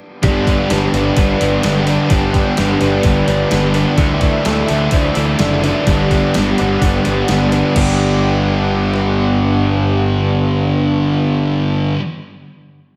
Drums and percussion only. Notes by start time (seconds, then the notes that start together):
0.23 kick, open hi-hat
0.47 kick, open hi-hat
0.70 snare, open hi-hat
0.94 open hi-hat
1.17 kick, open hi-hat
1.41 open hi-hat
1.63 snare, open hi-hat
1.87 open hi-hat
2.10 kick, open hi-hat
2.34 kick, open hi-hat
2.57 snare, open hi-hat
2.81 open hi-hat
3.03 kick, open hi-hat
3.28 open hi-hat
3.51 snare, open hi-hat
3.74 open hi-hat
3.98 kick, open hi-hat
4.21 kick, open hi-hat
4.45 snare, open hi-hat
4.68 open hi-hat
4.91 kick, open hi-hat
5.15 open hi-hat
5.39 snare, open hi-hat
5.64 open hi-hat
5.87 kick, open hi-hat
6.11 kick, open hi-hat
6.34 snare, open hi-hat
6.58 open hi-hat
6.82 kick, open hi-hat
7.05 open hi-hat
7.28 snare, open hi-hat
7.52 open hi-hat
7.76 kick, crash
8.94 cross-stick